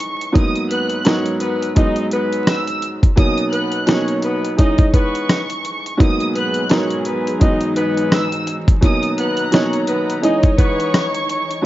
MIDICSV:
0, 0, Header, 1, 6, 480
1, 0, Start_track
1, 0, Key_signature, 5, "minor"
1, 0, Tempo, 705882
1, 241, Time_signature, 4, 2, 24, 8
1, 7928, End_track
2, 0, Start_track
2, 0, Title_t, "Violin section"
2, 0, Program_c, 0, 48
2, 0, Note_on_c, 0, 85, 88
2, 213, Note_off_c, 0, 85, 0
2, 244, Note_on_c, 0, 87, 100
2, 459, Note_off_c, 0, 87, 0
2, 481, Note_on_c, 0, 90, 77
2, 836, Note_off_c, 0, 90, 0
2, 1690, Note_on_c, 0, 88, 93
2, 1902, Note_off_c, 0, 88, 0
2, 2162, Note_on_c, 0, 87, 117
2, 2378, Note_off_c, 0, 87, 0
2, 2392, Note_on_c, 0, 90, 82
2, 2751, Note_off_c, 0, 90, 0
2, 3365, Note_on_c, 0, 85, 82
2, 4056, Note_off_c, 0, 85, 0
2, 4086, Note_on_c, 0, 87, 103
2, 4300, Note_off_c, 0, 87, 0
2, 4336, Note_on_c, 0, 90, 75
2, 4684, Note_off_c, 0, 90, 0
2, 5528, Note_on_c, 0, 88, 79
2, 5741, Note_off_c, 0, 88, 0
2, 6012, Note_on_c, 0, 87, 111
2, 6223, Note_off_c, 0, 87, 0
2, 6257, Note_on_c, 0, 90, 85
2, 6604, Note_off_c, 0, 90, 0
2, 7199, Note_on_c, 0, 85, 88
2, 7893, Note_off_c, 0, 85, 0
2, 7928, End_track
3, 0, Start_track
3, 0, Title_t, "Saxophone section"
3, 0, Program_c, 1, 65
3, 484, Note_on_c, 1, 59, 84
3, 484, Note_on_c, 1, 71, 95
3, 675, Note_off_c, 1, 59, 0
3, 675, Note_off_c, 1, 71, 0
3, 725, Note_on_c, 1, 61, 78
3, 725, Note_on_c, 1, 73, 92
3, 915, Note_off_c, 1, 73, 0
3, 916, Note_off_c, 1, 61, 0
3, 957, Note_on_c, 1, 59, 90
3, 957, Note_on_c, 1, 71, 100
3, 1151, Note_off_c, 1, 59, 0
3, 1151, Note_off_c, 1, 71, 0
3, 1203, Note_on_c, 1, 75, 115
3, 1204, Note_on_c, 1, 63, 101
3, 1395, Note_off_c, 1, 63, 0
3, 1395, Note_off_c, 1, 75, 0
3, 1445, Note_on_c, 1, 71, 110
3, 1446, Note_on_c, 1, 59, 90
3, 1798, Note_off_c, 1, 59, 0
3, 1798, Note_off_c, 1, 71, 0
3, 2395, Note_on_c, 1, 59, 88
3, 2395, Note_on_c, 1, 71, 102
3, 2590, Note_off_c, 1, 59, 0
3, 2590, Note_off_c, 1, 71, 0
3, 2640, Note_on_c, 1, 61, 88
3, 2641, Note_on_c, 1, 73, 91
3, 2832, Note_off_c, 1, 61, 0
3, 2833, Note_off_c, 1, 73, 0
3, 2885, Note_on_c, 1, 59, 86
3, 2885, Note_on_c, 1, 71, 96
3, 3075, Note_off_c, 1, 59, 0
3, 3075, Note_off_c, 1, 71, 0
3, 3115, Note_on_c, 1, 75, 109
3, 3116, Note_on_c, 1, 63, 98
3, 3310, Note_off_c, 1, 63, 0
3, 3310, Note_off_c, 1, 75, 0
3, 3360, Note_on_c, 1, 59, 92
3, 3360, Note_on_c, 1, 71, 103
3, 3715, Note_off_c, 1, 59, 0
3, 3715, Note_off_c, 1, 71, 0
3, 4322, Note_on_c, 1, 71, 103
3, 4323, Note_on_c, 1, 59, 87
3, 4514, Note_off_c, 1, 59, 0
3, 4514, Note_off_c, 1, 71, 0
3, 4565, Note_on_c, 1, 61, 80
3, 4565, Note_on_c, 1, 73, 91
3, 4755, Note_off_c, 1, 61, 0
3, 4755, Note_off_c, 1, 73, 0
3, 4802, Note_on_c, 1, 59, 77
3, 4802, Note_on_c, 1, 71, 86
3, 4994, Note_off_c, 1, 59, 0
3, 4994, Note_off_c, 1, 71, 0
3, 5044, Note_on_c, 1, 63, 91
3, 5044, Note_on_c, 1, 75, 105
3, 5235, Note_off_c, 1, 63, 0
3, 5235, Note_off_c, 1, 75, 0
3, 5278, Note_on_c, 1, 59, 92
3, 5279, Note_on_c, 1, 71, 107
3, 5634, Note_off_c, 1, 59, 0
3, 5634, Note_off_c, 1, 71, 0
3, 6243, Note_on_c, 1, 59, 88
3, 6244, Note_on_c, 1, 71, 97
3, 6435, Note_off_c, 1, 59, 0
3, 6435, Note_off_c, 1, 71, 0
3, 6483, Note_on_c, 1, 61, 86
3, 6483, Note_on_c, 1, 73, 92
3, 6674, Note_off_c, 1, 73, 0
3, 6675, Note_off_c, 1, 61, 0
3, 6722, Note_on_c, 1, 59, 89
3, 6722, Note_on_c, 1, 71, 99
3, 6914, Note_off_c, 1, 59, 0
3, 6914, Note_off_c, 1, 71, 0
3, 6961, Note_on_c, 1, 63, 93
3, 6961, Note_on_c, 1, 75, 107
3, 7153, Note_off_c, 1, 63, 0
3, 7153, Note_off_c, 1, 75, 0
3, 7196, Note_on_c, 1, 59, 92
3, 7196, Note_on_c, 1, 71, 106
3, 7553, Note_off_c, 1, 59, 0
3, 7553, Note_off_c, 1, 71, 0
3, 7928, End_track
4, 0, Start_track
4, 0, Title_t, "Upright piano"
4, 0, Program_c, 2, 0
4, 0, Note_on_c, 2, 52, 88
4, 0, Note_on_c, 2, 56, 83
4, 0, Note_on_c, 2, 61, 89
4, 0, Note_on_c, 2, 63, 111
4, 168, Note_off_c, 2, 52, 0
4, 171, Note_off_c, 2, 56, 0
4, 174, Note_off_c, 2, 61, 0
4, 177, Note_off_c, 2, 63, 0
4, 219, Note_on_c, 2, 44, 94
4, 223, Note_on_c, 2, 54, 91
4, 227, Note_on_c, 2, 58, 81
4, 231, Note_on_c, 2, 59, 88
4, 236, Note_on_c, 2, 63, 115
4, 677, Note_off_c, 2, 44, 0
4, 679, Note_off_c, 2, 54, 0
4, 681, Note_off_c, 2, 58, 0
4, 683, Note_off_c, 2, 59, 0
4, 686, Note_off_c, 2, 63, 0
4, 711, Note_on_c, 2, 44, 98
4, 715, Note_on_c, 2, 54, 92
4, 720, Note_on_c, 2, 70, 93
4, 724, Note_on_c, 2, 59, 87
4, 728, Note_on_c, 2, 63, 111
4, 1181, Note_off_c, 2, 44, 0
4, 1186, Note_off_c, 2, 54, 0
4, 1191, Note_on_c, 2, 44, 99
4, 1194, Note_off_c, 2, 59, 0
4, 1196, Note_on_c, 2, 54, 85
4, 1198, Note_off_c, 2, 63, 0
4, 1200, Note_on_c, 2, 56, 84
4, 1201, Note_off_c, 2, 70, 0
4, 1204, Note_on_c, 2, 59, 91
4, 1208, Note_on_c, 2, 63, 109
4, 2090, Note_off_c, 2, 44, 0
4, 2093, Note_off_c, 2, 54, 0
4, 2095, Note_off_c, 2, 56, 0
4, 2097, Note_off_c, 2, 59, 0
4, 2099, Note_off_c, 2, 63, 0
4, 2148, Note_on_c, 2, 47, 95
4, 2152, Note_on_c, 2, 54, 83
4, 2156, Note_on_c, 2, 58, 84
4, 2161, Note_on_c, 2, 61, 88
4, 2166, Note_on_c, 2, 63, 102
4, 2602, Note_off_c, 2, 47, 0
4, 2604, Note_off_c, 2, 54, 0
4, 2606, Note_off_c, 2, 58, 0
4, 2608, Note_off_c, 2, 61, 0
4, 2611, Note_off_c, 2, 63, 0
4, 2628, Note_on_c, 2, 47, 103
4, 2633, Note_on_c, 2, 54, 92
4, 2637, Note_on_c, 2, 58, 81
4, 2641, Note_on_c, 2, 61, 90
4, 2645, Note_on_c, 2, 63, 111
4, 3082, Note_off_c, 2, 47, 0
4, 3084, Note_off_c, 2, 54, 0
4, 3086, Note_off_c, 2, 58, 0
4, 3088, Note_off_c, 2, 61, 0
4, 3090, Note_off_c, 2, 63, 0
4, 3107, Note_on_c, 2, 52, 89
4, 3113, Note_on_c, 2, 56, 87
4, 3118, Note_on_c, 2, 61, 92
4, 3123, Note_on_c, 2, 63, 108
4, 4008, Note_off_c, 2, 52, 0
4, 4011, Note_off_c, 2, 56, 0
4, 4014, Note_off_c, 2, 61, 0
4, 4016, Note_off_c, 2, 63, 0
4, 4061, Note_on_c, 2, 44, 92
4, 4065, Note_on_c, 2, 54, 86
4, 4069, Note_on_c, 2, 58, 82
4, 4074, Note_on_c, 2, 59, 88
4, 4078, Note_on_c, 2, 63, 110
4, 4518, Note_off_c, 2, 44, 0
4, 4520, Note_off_c, 2, 54, 0
4, 4522, Note_off_c, 2, 58, 0
4, 4525, Note_off_c, 2, 59, 0
4, 4527, Note_off_c, 2, 63, 0
4, 4552, Note_on_c, 2, 44, 98
4, 4557, Note_on_c, 2, 54, 91
4, 4561, Note_on_c, 2, 70, 93
4, 4565, Note_on_c, 2, 59, 85
4, 4569, Note_on_c, 2, 63, 110
4, 5020, Note_off_c, 2, 44, 0
4, 5025, Note_off_c, 2, 54, 0
4, 5030, Note_on_c, 2, 44, 100
4, 5033, Note_off_c, 2, 59, 0
4, 5035, Note_on_c, 2, 54, 87
4, 5038, Note_off_c, 2, 63, 0
4, 5040, Note_on_c, 2, 56, 84
4, 5041, Note_off_c, 2, 70, 0
4, 5043, Note_on_c, 2, 59, 91
4, 5048, Note_on_c, 2, 63, 108
4, 5930, Note_off_c, 2, 44, 0
4, 5932, Note_off_c, 2, 54, 0
4, 5934, Note_off_c, 2, 56, 0
4, 5936, Note_off_c, 2, 59, 0
4, 5939, Note_off_c, 2, 63, 0
4, 5991, Note_on_c, 2, 47, 95
4, 5996, Note_on_c, 2, 54, 82
4, 6000, Note_on_c, 2, 58, 81
4, 6004, Note_on_c, 2, 61, 87
4, 6008, Note_on_c, 2, 63, 104
4, 6443, Note_off_c, 2, 47, 0
4, 6445, Note_off_c, 2, 54, 0
4, 6448, Note_off_c, 2, 58, 0
4, 6450, Note_off_c, 2, 61, 0
4, 6452, Note_off_c, 2, 63, 0
4, 6471, Note_on_c, 2, 47, 103
4, 6475, Note_on_c, 2, 54, 89
4, 6480, Note_on_c, 2, 58, 79
4, 6483, Note_on_c, 2, 61, 92
4, 6488, Note_on_c, 2, 63, 112
4, 6923, Note_off_c, 2, 47, 0
4, 6925, Note_off_c, 2, 54, 0
4, 6928, Note_off_c, 2, 58, 0
4, 6929, Note_off_c, 2, 61, 0
4, 6932, Note_off_c, 2, 63, 0
4, 6948, Note_on_c, 2, 52, 91
4, 6954, Note_on_c, 2, 56, 85
4, 6960, Note_on_c, 2, 61, 94
4, 6966, Note_on_c, 2, 63, 106
4, 7849, Note_off_c, 2, 52, 0
4, 7852, Note_off_c, 2, 56, 0
4, 7855, Note_off_c, 2, 61, 0
4, 7858, Note_off_c, 2, 63, 0
4, 7900, Note_on_c, 2, 44, 91
4, 7904, Note_on_c, 2, 54, 87
4, 7928, Note_off_c, 2, 44, 0
4, 7928, Note_off_c, 2, 54, 0
4, 7928, End_track
5, 0, Start_track
5, 0, Title_t, "String section"
5, 0, Program_c, 3, 48
5, 4085, Note_on_c, 3, 68, 86
5, 4086, Note_on_c, 3, 47, 70
5, 4086, Note_on_c, 3, 54, 81
5, 5034, Note_off_c, 3, 47, 0
5, 5034, Note_off_c, 3, 54, 0
5, 5040, Note_on_c, 3, 44, 77
5, 5040, Note_on_c, 3, 52, 76
5, 5040, Note_on_c, 3, 63, 70
5, 5984, Note_off_c, 3, 68, 0
5, 5991, Note_off_c, 3, 44, 0
5, 5991, Note_off_c, 3, 52, 0
5, 5991, Note_off_c, 3, 63, 0
5, 6002, Note_on_c, 3, 47, 69
5, 6002, Note_on_c, 3, 51, 76
5, 6002, Note_on_c, 3, 82, 87
5, 6952, Note_off_c, 3, 47, 0
5, 6952, Note_off_c, 3, 51, 0
5, 6952, Note_off_c, 3, 82, 0
5, 6955, Note_on_c, 3, 52, 83
5, 6956, Note_on_c, 3, 63, 73
5, 6956, Note_on_c, 3, 73, 95
5, 7909, Note_off_c, 3, 52, 0
5, 7909, Note_off_c, 3, 63, 0
5, 7909, Note_off_c, 3, 73, 0
5, 7928, End_track
6, 0, Start_track
6, 0, Title_t, "Drums"
6, 1, Note_on_c, 9, 42, 74
6, 69, Note_off_c, 9, 42, 0
6, 145, Note_on_c, 9, 42, 55
6, 213, Note_off_c, 9, 42, 0
6, 241, Note_on_c, 9, 42, 101
6, 242, Note_on_c, 9, 36, 122
6, 309, Note_off_c, 9, 42, 0
6, 310, Note_off_c, 9, 36, 0
6, 377, Note_on_c, 9, 42, 52
6, 445, Note_off_c, 9, 42, 0
6, 481, Note_on_c, 9, 42, 87
6, 549, Note_off_c, 9, 42, 0
6, 608, Note_on_c, 9, 42, 53
6, 676, Note_off_c, 9, 42, 0
6, 714, Note_on_c, 9, 42, 94
6, 725, Note_on_c, 9, 38, 113
6, 726, Note_on_c, 9, 37, 90
6, 782, Note_off_c, 9, 42, 0
6, 793, Note_off_c, 9, 38, 0
6, 794, Note_off_c, 9, 37, 0
6, 855, Note_on_c, 9, 42, 58
6, 923, Note_off_c, 9, 42, 0
6, 954, Note_on_c, 9, 42, 88
6, 1022, Note_off_c, 9, 42, 0
6, 1105, Note_on_c, 9, 42, 61
6, 1173, Note_off_c, 9, 42, 0
6, 1198, Note_on_c, 9, 42, 90
6, 1202, Note_on_c, 9, 36, 101
6, 1266, Note_off_c, 9, 42, 0
6, 1270, Note_off_c, 9, 36, 0
6, 1332, Note_on_c, 9, 42, 52
6, 1400, Note_off_c, 9, 42, 0
6, 1437, Note_on_c, 9, 42, 87
6, 1505, Note_off_c, 9, 42, 0
6, 1581, Note_on_c, 9, 42, 56
6, 1649, Note_off_c, 9, 42, 0
6, 1680, Note_on_c, 9, 38, 123
6, 1681, Note_on_c, 9, 37, 96
6, 1681, Note_on_c, 9, 42, 92
6, 1748, Note_off_c, 9, 38, 0
6, 1749, Note_off_c, 9, 37, 0
6, 1749, Note_off_c, 9, 42, 0
6, 1818, Note_on_c, 9, 42, 61
6, 1886, Note_off_c, 9, 42, 0
6, 1919, Note_on_c, 9, 42, 73
6, 1987, Note_off_c, 9, 42, 0
6, 2060, Note_on_c, 9, 36, 94
6, 2062, Note_on_c, 9, 42, 55
6, 2128, Note_off_c, 9, 36, 0
6, 2130, Note_off_c, 9, 42, 0
6, 2159, Note_on_c, 9, 42, 102
6, 2160, Note_on_c, 9, 36, 121
6, 2227, Note_off_c, 9, 42, 0
6, 2228, Note_off_c, 9, 36, 0
6, 2296, Note_on_c, 9, 42, 52
6, 2364, Note_off_c, 9, 42, 0
6, 2399, Note_on_c, 9, 42, 89
6, 2467, Note_off_c, 9, 42, 0
6, 2527, Note_on_c, 9, 42, 53
6, 2595, Note_off_c, 9, 42, 0
6, 2631, Note_on_c, 9, 42, 92
6, 2643, Note_on_c, 9, 38, 114
6, 2644, Note_on_c, 9, 37, 92
6, 2699, Note_off_c, 9, 42, 0
6, 2711, Note_off_c, 9, 38, 0
6, 2712, Note_off_c, 9, 37, 0
6, 2774, Note_on_c, 9, 42, 56
6, 2842, Note_off_c, 9, 42, 0
6, 2872, Note_on_c, 9, 42, 90
6, 2940, Note_off_c, 9, 42, 0
6, 3023, Note_on_c, 9, 42, 58
6, 3091, Note_off_c, 9, 42, 0
6, 3118, Note_on_c, 9, 42, 91
6, 3121, Note_on_c, 9, 36, 100
6, 3186, Note_off_c, 9, 42, 0
6, 3189, Note_off_c, 9, 36, 0
6, 3251, Note_on_c, 9, 42, 51
6, 3255, Note_on_c, 9, 36, 102
6, 3319, Note_off_c, 9, 42, 0
6, 3323, Note_off_c, 9, 36, 0
6, 3357, Note_on_c, 9, 36, 94
6, 3358, Note_on_c, 9, 42, 87
6, 3425, Note_off_c, 9, 36, 0
6, 3426, Note_off_c, 9, 42, 0
6, 3502, Note_on_c, 9, 42, 56
6, 3570, Note_off_c, 9, 42, 0
6, 3600, Note_on_c, 9, 38, 124
6, 3601, Note_on_c, 9, 37, 95
6, 3601, Note_on_c, 9, 42, 94
6, 3668, Note_off_c, 9, 38, 0
6, 3669, Note_off_c, 9, 37, 0
6, 3669, Note_off_c, 9, 42, 0
6, 3738, Note_on_c, 9, 42, 63
6, 3806, Note_off_c, 9, 42, 0
6, 3840, Note_on_c, 9, 42, 71
6, 3908, Note_off_c, 9, 42, 0
6, 3985, Note_on_c, 9, 42, 59
6, 4053, Note_off_c, 9, 42, 0
6, 4081, Note_on_c, 9, 36, 120
6, 4081, Note_on_c, 9, 42, 106
6, 4149, Note_off_c, 9, 36, 0
6, 4149, Note_off_c, 9, 42, 0
6, 4218, Note_on_c, 9, 42, 52
6, 4286, Note_off_c, 9, 42, 0
6, 4321, Note_on_c, 9, 42, 86
6, 4389, Note_off_c, 9, 42, 0
6, 4448, Note_on_c, 9, 42, 52
6, 4516, Note_off_c, 9, 42, 0
6, 4553, Note_on_c, 9, 42, 91
6, 4564, Note_on_c, 9, 38, 112
6, 4565, Note_on_c, 9, 37, 91
6, 4621, Note_off_c, 9, 42, 0
6, 4632, Note_off_c, 9, 38, 0
6, 4633, Note_off_c, 9, 37, 0
6, 4695, Note_on_c, 9, 42, 58
6, 4763, Note_off_c, 9, 42, 0
6, 4794, Note_on_c, 9, 42, 89
6, 4862, Note_off_c, 9, 42, 0
6, 4945, Note_on_c, 9, 42, 60
6, 5013, Note_off_c, 9, 42, 0
6, 5039, Note_on_c, 9, 42, 86
6, 5042, Note_on_c, 9, 36, 103
6, 5107, Note_off_c, 9, 42, 0
6, 5110, Note_off_c, 9, 36, 0
6, 5172, Note_on_c, 9, 42, 53
6, 5240, Note_off_c, 9, 42, 0
6, 5278, Note_on_c, 9, 42, 81
6, 5346, Note_off_c, 9, 42, 0
6, 5422, Note_on_c, 9, 42, 56
6, 5490, Note_off_c, 9, 42, 0
6, 5521, Note_on_c, 9, 38, 117
6, 5521, Note_on_c, 9, 42, 88
6, 5522, Note_on_c, 9, 37, 94
6, 5589, Note_off_c, 9, 38, 0
6, 5589, Note_off_c, 9, 42, 0
6, 5590, Note_off_c, 9, 37, 0
6, 5660, Note_on_c, 9, 42, 62
6, 5728, Note_off_c, 9, 42, 0
6, 5760, Note_on_c, 9, 42, 73
6, 5828, Note_off_c, 9, 42, 0
6, 5902, Note_on_c, 9, 36, 96
6, 5905, Note_on_c, 9, 42, 56
6, 5970, Note_off_c, 9, 36, 0
6, 5973, Note_off_c, 9, 42, 0
6, 6001, Note_on_c, 9, 42, 106
6, 6002, Note_on_c, 9, 36, 126
6, 6069, Note_off_c, 9, 42, 0
6, 6070, Note_off_c, 9, 36, 0
6, 6138, Note_on_c, 9, 42, 50
6, 6206, Note_off_c, 9, 42, 0
6, 6242, Note_on_c, 9, 42, 85
6, 6310, Note_off_c, 9, 42, 0
6, 6370, Note_on_c, 9, 42, 54
6, 6438, Note_off_c, 9, 42, 0
6, 6474, Note_on_c, 9, 42, 92
6, 6486, Note_on_c, 9, 38, 114
6, 6487, Note_on_c, 9, 37, 90
6, 6542, Note_off_c, 9, 42, 0
6, 6554, Note_off_c, 9, 38, 0
6, 6555, Note_off_c, 9, 37, 0
6, 6616, Note_on_c, 9, 42, 57
6, 6684, Note_off_c, 9, 42, 0
6, 6714, Note_on_c, 9, 42, 84
6, 6782, Note_off_c, 9, 42, 0
6, 6866, Note_on_c, 9, 42, 60
6, 6934, Note_off_c, 9, 42, 0
6, 6960, Note_on_c, 9, 42, 88
6, 7028, Note_off_c, 9, 42, 0
6, 7093, Note_on_c, 9, 42, 52
6, 7096, Note_on_c, 9, 36, 100
6, 7161, Note_off_c, 9, 42, 0
6, 7164, Note_off_c, 9, 36, 0
6, 7198, Note_on_c, 9, 36, 100
6, 7198, Note_on_c, 9, 42, 85
6, 7266, Note_off_c, 9, 36, 0
6, 7266, Note_off_c, 9, 42, 0
6, 7342, Note_on_c, 9, 42, 57
6, 7410, Note_off_c, 9, 42, 0
6, 7440, Note_on_c, 9, 38, 120
6, 7440, Note_on_c, 9, 42, 92
6, 7441, Note_on_c, 9, 37, 94
6, 7508, Note_off_c, 9, 38, 0
6, 7508, Note_off_c, 9, 42, 0
6, 7509, Note_off_c, 9, 37, 0
6, 7578, Note_on_c, 9, 42, 62
6, 7646, Note_off_c, 9, 42, 0
6, 7680, Note_on_c, 9, 42, 74
6, 7748, Note_off_c, 9, 42, 0
6, 7824, Note_on_c, 9, 42, 57
6, 7892, Note_off_c, 9, 42, 0
6, 7928, End_track
0, 0, End_of_file